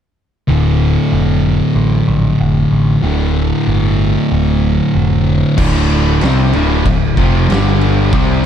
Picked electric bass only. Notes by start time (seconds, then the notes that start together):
0.49 D1
1.12 F1
1.76 A1
2.08 A#1
2.40 F1
2.71 A1
3.03 D1
3.67 G1
4.32 D1
4.95 F1
5.58 D1
6.23 C2
6.54 D1
6.86 D1
7.17 F1
7.50 G1
8.13 C2